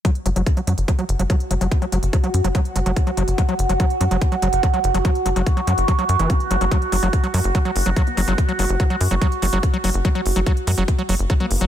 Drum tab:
HH |xxxxxxxxxxxxxxxx|xxxxxxxxxxxxxxxx|xxxxxxxxxxxxxxxx|xxxxxxxxxxxxxxxx|
BD |o---o---o---o---|o---o---o---o---|o---o---o---o---|o---o---o---o---|

HH |xxoxxxoxxxoxxxox|xxoxxxoxxxoxxxox|xxoxxxoxxxoxxxox|
BD |o---o---o---o---|o---o---o---o---|o---o---o---o---|